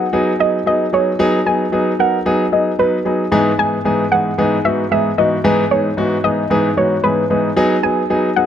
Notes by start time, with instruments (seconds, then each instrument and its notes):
0.13 grand piano F#3 B3 D#4 G#4
0.39 grand piano F#3 B3 D#4 G#4, synth pluck D#5
0.66 grand piano F#3 B3 D#4 G#4, synth pluck D#5
0.93 grand piano F#3 B3 D#4 G#4, synth pluck C#5
1.19 grand piano F#3 B3 D#4 G#4
1.46 grand piano F#3 B3 D#4 G#4, synth pluck G#5
1.72 grand piano F#3 B3 D#4 G#4
1.99 grand piano F#3 B3 D#4 A#4, synth pluck F#5
2.26 grand piano F#3 B3 D#4 G#4
2.52 grand piano F#3 B3 D#4 G#4, synth pluck D#5
2.79 grand piano F#3 B3 D#4 B4, synth pluck B4
3.05 grand piano F#3 B3 D#4 G#4
3.32 grand piano G#2 E3 B3 D#4 G#4
3.58 grand piano G#2 E3 B3 D#4 G#4, synth pluck G#5
3.85 grand piano G#2 E3 B3 D#4 G#4
4.12 grand piano G#2 E3 B3 D#4 G#4, synth pluck F#5
4.38 grand piano G#2 E3 B3 D#4 G#4
4.65 grand piano G#2 E3 B3 D#4 F#4, synth pluck E5
4.91 grand piano G#2 E3 B3 D#4 G#4, synth pluck E5
5.18 grand piano G#2 E3 B3 D#4 F#4, synth pluck D#5
5.44 grand piano G#2 E3 B3 D#4 G#4
5.71 grand piano G#2 E3 B3 D#4 G#4, synth pluck C#5
5.97 grand piano G#2 E3 B3 D#4 F#4
6.24 grand piano G#2 E3 B3 D#4 G#4, synth pluck D#5
6.50 grand piano G#2 E3 B3 D#4 G#4
6.77 grand piano G#2 E3 B3 D#4 F#4, synth pluck C#5
7.04 grand piano G#2 E3 B3 D#4 G#4, synth pluck B4
7.30 grand piano G#2 E3 B3 D#4 G#4
7.57 grand piano F#3 B3 D#4 G#4
7.83 grand piano F#3 B3 D#4 G#4, synth pluck G#5
8.10 grand piano F#3 B3 D#4 G#4
8.36 grand piano F#3 B3 D#4 G#4, synth pluck F#5